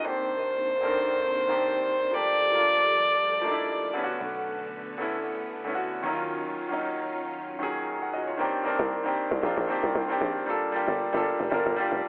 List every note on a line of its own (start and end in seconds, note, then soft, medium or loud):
0.03 2.11 C3 medium
0.03 0.10 D3 medium
0.03 2.11 D#3 medium
0.03 0.67 A#3 medium
0.03 2.11 A#3 medium
0.03 0.68 C4 medium
0.03 2.11 D4 medium
0.03 0.68 D4 medium
0.03 2.15 C5 loud
0.07 0.70 D#3 medium
0.07 0.69 G4 medium
0.81 0.88 D3 medium
0.81 1.34 A#3 medium
0.81 1.35 C4 medium
0.81 1.35 D4 medium
0.81 1.36 A#4 loud
0.87 1.37 D#3 medium
1.48 2.00 D#3 medium
1.48 2.01 A#3 medium
1.48 2.01 C4 medium
1.48 2.02 D4 medium
1.48 2.02 G4 medium
2.11 2.44 F3 medium
2.11 3.93 F3 medium
2.11 3.93 G3 medium
2.11 2.44 A3 medium
2.11 2.45 A#3 medium
2.11 2.45 D4 medium
2.11 3.93 G4 medium
2.11 2.46 G4 medium
2.11 3.93 A4 medium
2.11 3.96 D5 loud
2.52 3.25 F3 medium
2.52 3.25 A3 medium
2.52 3.26 A#3 medium
2.52 3.26 D4 medium
2.56 3.27 F4 medium
3.41 3.94 F3 medium
3.41 3.93 A3 medium
3.41 3.95 A#3 medium
3.41 3.96 D4 medium
3.45 3.51 D#4 medium
3.52 3.96 E4 loud
3.94 4.78 D3 medium
3.94 6.02 D3 medium
3.94 4.79 A3 medium
3.94 6.02 A3 medium
3.94 6.02 B3 medium
3.94 4.79 B3 medium
3.94 4.80 C#4 medium
3.94 4.03 E4 medium
4.04 4.83 F#4 loud
4.21 6.00 B1 medium
4.98 5.51 D3 medium
4.98 5.51 A3 medium
4.98 5.52 B3 medium
4.98 5.52 C#4 medium
5.02 5.53 E4 loud
5.65 6.03 D3 medium
5.65 6.04 A3 medium
5.65 6.04 B3 medium
5.65 6.04 C#4 medium
5.69 5.73 E4 medium
5.75 6.08 F#4 loud
6.03 7.32 D#2 medium
6.03 6.55 D#3 loud
6.03 8.36 D#3 medium
6.03 6.56 F#3 medium
6.03 8.36 F#3 medium
6.03 6.56 A#3 medium
6.03 8.36 C#4 medium
6.03 6.57 C#4 medium
6.03 6.12 E4 medium
6.03 8.36 F4 medium
6.13 6.60 F4 loud
6.69 7.42 D#3 medium
6.69 7.43 F#3 medium
6.69 7.43 A#3 medium
6.69 7.44 C#4 medium
6.73 7.44 D#4 loud
7.59 8.23 D#3 medium
7.59 8.24 F#3 medium
7.59 8.24 A#3 medium
7.59 8.25 C#4 medium
7.63 7.88 G#4 loud
8.02 8.13 A#4 medium
8.02 8.12 F#5 medium
8.14 8.27 F#4 medium
8.14 8.27 D#5 medium
8.27 8.52 F4 medium
8.27 8.52 C#5 medium
8.37 8.59 D#3 medium
8.37 8.60 A#3 medium
8.37 8.60 C4 medium
8.37 8.61 D4 medium
8.41 8.61 G4 loud
8.64 8.96 D#3 medium
8.64 8.96 A#3 medium
8.64 8.97 C4 medium
8.64 8.97 D4 medium
8.68 8.98 A#4 loud
8.79 9.07 C2 loud
9.04 9.28 A#1 medium
9.04 9.35 D#3 medium
9.04 9.36 A#3 medium
9.04 9.36 C4 medium
9.04 9.37 D4 medium
9.04 9.37 G4 loud
9.32 9.41 C2 loud
9.42 9.55 A#1 loud
9.42 9.64 D#3 medium
9.42 9.64 A#3 medium
9.42 9.65 C4 medium
9.42 9.65 D4 medium
9.46 9.66 F4 loud
9.57 9.80 A#1 medium
9.68 10.00 D#3 medium
9.68 10.01 A#3 medium
9.68 10.01 C4 medium
9.68 10.02 D4 medium
9.68 10.02 G4 loud
9.84 9.94 C2 medium
9.95 10.18 C2 loud
10.08 10.40 D#3 medium
10.08 10.40 A#3 medium
10.08 10.41 C4 medium
10.08 10.41 D4 medium
10.08 10.42 G4 loud
10.21 10.44 A#1 loud
10.46 10.68 G3 medium
10.46 10.69 A#3 medium
10.46 10.69 D4 medium
10.46 10.70 F4 medium
10.46 10.70 A4 loud
10.72 11.05 G3 medium
10.72 11.05 A#3 medium
10.72 11.06 D4 medium
10.72 11.06 F4 medium
10.76 11.07 G4 loud
10.88 11.10 G1 loud
11.13 11.36 G1 loud
11.13 11.44 G3 medium
11.13 11.45 A#3 medium
11.13 11.45 D4 medium
11.13 11.46 F4 medium
11.17 11.46 A4 loud
11.40 11.50 F1 loud
11.50 11.64 G1 loud
11.50 11.72 G3 medium
11.50 11.73 A#3 medium
11.50 11.73 D4 medium
11.50 11.74 F4 medium
11.50 11.74 A#4 loud
11.66 11.89 G1 medium
11.76 12.08 G3 medium
11.76 12.08 A#3 medium
11.76 12.08 D4 medium
11.76 12.08 F4 medium
11.76 12.08 G4 loud
11.92 12.02 F1 medium